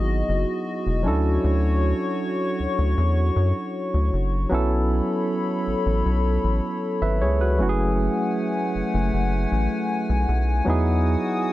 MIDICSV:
0, 0, Header, 1, 4, 480
1, 0, Start_track
1, 0, Tempo, 769231
1, 895, Time_signature, 4, 2, 24, 8
1, 7193, End_track
2, 0, Start_track
2, 0, Title_t, "Analog synth pad"
2, 0, Program_c, 0, 89
2, 0, Note_on_c, 0, 66, 80
2, 0, Note_on_c, 0, 75, 76
2, 637, Note_off_c, 0, 75, 0
2, 655, Note_on_c, 0, 73, 74
2, 656, Note_on_c, 0, 85, 73
2, 2789, Note_off_c, 0, 66, 0
2, 2794, Note_off_c, 0, 73, 0
2, 2794, Note_off_c, 0, 85, 0
2, 2814, Note_on_c, 0, 69, 81
2, 2815, Note_on_c, 0, 73, 75
2, 2816, Note_on_c, 0, 83, 75
2, 4716, Note_off_c, 0, 69, 0
2, 4716, Note_off_c, 0, 73, 0
2, 4717, Note_off_c, 0, 83, 0
2, 4736, Note_on_c, 0, 57, 81
2, 4737, Note_on_c, 0, 78, 79
2, 4737, Note_on_c, 0, 80, 76
2, 6637, Note_off_c, 0, 57, 0
2, 6637, Note_off_c, 0, 78, 0
2, 6655, Note_on_c, 0, 78, 73
2, 6657, Note_on_c, 0, 66, 84
2, 6657, Note_on_c, 0, 87, 91
2, 7193, Note_off_c, 0, 66, 0
2, 7193, Note_off_c, 0, 78, 0
2, 7193, Note_off_c, 0, 80, 0
2, 7193, Note_off_c, 0, 87, 0
2, 7193, End_track
3, 0, Start_track
3, 0, Title_t, "Tine electric piano"
3, 0, Program_c, 1, 4
3, 0, Control_c, 1, 64, 127
3, 0, Note_on_c, 1, 54, 68
3, 0, Note_on_c, 1, 59, 66
3, 0, Note_on_c, 1, 63, 67
3, 0, Note_on_c, 1, 64, 64
3, 0, Note_on_c, 1, 68, 81
3, 624, Note_off_c, 1, 54, 0
3, 628, Note_off_c, 1, 59, 0
3, 631, Note_off_c, 1, 63, 0
3, 635, Note_off_c, 1, 64, 0
3, 640, Note_off_c, 1, 68, 0
3, 641, Note_on_c, 1, 54, 65
3, 650, Note_on_c, 1, 61, 61
3, 656, Note_on_c, 1, 62, 64
3, 664, Control_c, 1, 64, 0
3, 665, Note_on_c, 1, 64, 61
3, 672, Note_on_c, 1, 69, 75
3, 790, Control_c, 1, 64, 127
3, 2543, Note_off_c, 1, 54, 0
3, 2548, Note_off_c, 1, 61, 0
3, 2551, Note_off_c, 1, 62, 0
3, 2555, Note_off_c, 1, 64, 0
3, 2559, Note_off_c, 1, 69, 0
3, 2803, Note_on_c, 1, 54, 73
3, 2812, Note_on_c, 1, 59, 64
3, 2819, Note_on_c, 1, 61, 66
3, 2824, Control_c, 1, 64, 0
3, 2829, Note_on_c, 1, 64, 66
3, 2835, Note_on_c, 1, 69, 78
3, 2948, Control_c, 1, 64, 127
3, 4241, Note_off_c, 1, 69, 0
3, 4380, Note_on_c, 1, 76, 58
3, 4383, Note_on_c, 1, 71, 52
3, 4492, Note_off_c, 1, 76, 0
3, 4494, Note_off_c, 1, 71, 0
3, 4502, Note_on_c, 1, 73, 64
3, 4508, Note_on_c, 1, 68, 52
3, 4613, Note_off_c, 1, 73, 0
3, 4616, Note_off_c, 1, 68, 0
3, 4624, Note_on_c, 1, 71, 59
3, 4628, Note_on_c, 1, 66, 53
3, 4705, Note_off_c, 1, 54, 0
3, 4709, Note_off_c, 1, 59, 0
3, 4713, Note_off_c, 1, 61, 0
3, 4717, Note_off_c, 1, 64, 0
3, 4727, Note_on_c, 1, 54, 71
3, 4734, Note_on_c, 1, 57, 68
3, 4742, Note_on_c, 1, 61, 66
3, 4743, Control_c, 1, 64, 0
3, 4749, Note_off_c, 1, 66, 0
3, 4749, Note_on_c, 1, 64, 63
3, 4757, Note_on_c, 1, 66, 63
3, 4787, Note_off_c, 1, 66, 0
3, 4798, Note_on_c, 1, 68, 80
3, 4835, Control_c, 1, 64, 127
3, 4848, Note_off_c, 1, 71, 0
3, 6626, Note_off_c, 1, 54, 0
3, 6630, Note_off_c, 1, 57, 0
3, 6634, Note_off_c, 1, 61, 0
3, 6637, Note_off_c, 1, 64, 0
3, 6644, Note_on_c, 1, 54, 73
3, 6652, Note_on_c, 1, 59, 65
3, 6660, Note_on_c, 1, 63, 63
3, 6662, Note_off_c, 1, 68, 0
3, 6663, Control_c, 1, 64, 0
3, 6667, Note_on_c, 1, 64, 66
3, 6674, Note_on_c, 1, 68, 78
3, 6763, Control_c, 1, 64, 127
3, 7193, Note_off_c, 1, 54, 0
3, 7193, Note_off_c, 1, 59, 0
3, 7193, Note_off_c, 1, 63, 0
3, 7193, Note_off_c, 1, 64, 0
3, 7193, Note_off_c, 1, 68, 0
3, 7193, End_track
4, 0, Start_track
4, 0, Title_t, "Analog synth bass"
4, 0, Program_c, 2, 38
4, 0, Note_on_c, 2, 32, 99
4, 142, Note_off_c, 2, 32, 0
4, 179, Note_on_c, 2, 30, 91
4, 280, Note_off_c, 2, 30, 0
4, 538, Note_on_c, 2, 28, 88
4, 658, Note_on_c, 2, 38, 102
4, 668, Note_off_c, 2, 28, 0
4, 863, Note_off_c, 2, 38, 0
4, 898, Note_on_c, 2, 38, 103
4, 1205, Note_off_c, 2, 38, 0
4, 1619, Note_on_c, 2, 38, 47
4, 1666, Note_off_c, 2, 38, 0
4, 1738, Note_on_c, 2, 38, 83
4, 1839, Note_off_c, 2, 38, 0
4, 1856, Note_on_c, 2, 40, 98
4, 2061, Note_off_c, 2, 40, 0
4, 2097, Note_on_c, 2, 42, 90
4, 2199, Note_off_c, 2, 42, 0
4, 2457, Note_on_c, 2, 38, 78
4, 2559, Note_off_c, 2, 38, 0
4, 2577, Note_on_c, 2, 30, 88
4, 2782, Note_off_c, 2, 30, 0
4, 2818, Note_on_c, 2, 35, 97
4, 3125, Note_off_c, 2, 35, 0
4, 3538, Note_on_c, 2, 33, 42
4, 3585, Note_off_c, 2, 33, 0
4, 3657, Note_on_c, 2, 33, 88
4, 3759, Note_off_c, 2, 33, 0
4, 3779, Note_on_c, 2, 35, 94
4, 3983, Note_off_c, 2, 35, 0
4, 4017, Note_on_c, 2, 33, 92
4, 4119, Note_off_c, 2, 33, 0
4, 4378, Note_on_c, 2, 32, 87
4, 4499, Note_on_c, 2, 37, 95
4, 4508, Note_off_c, 2, 32, 0
4, 4739, Note_on_c, 2, 30, 98
4, 4748, Note_off_c, 2, 37, 0
4, 5046, Note_off_c, 2, 30, 0
4, 5459, Note_on_c, 2, 30, 46
4, 5507, Note_off_c, 2, 30, 0
4, 5579, Note_on_c, 2, 30, 92
4, 5680, Note_off_c, 2, 30, 0
4, 5699, Note_on_c, 2, 30, 89
4, 5903, Note_off_c, 2, 30, 0
4, 5938, Note_on_c, 2, 33, 88
4, 6040, Note_off_c, 2, 33, 0
4, 6298, Note_on_c, 2, 35, 88
4, 6400, Note_off_c, 2, 35, 0
4, 6417, Note_on_c, 2, 35, 97
4, 6622, Note_off_c, 2, 35, 0
4, 6657, Note_on_c, 2, 40, 95
4, 6965, Note_off_c, 2, 40, 0
4, 7193, End_track
0, 0, End_of_file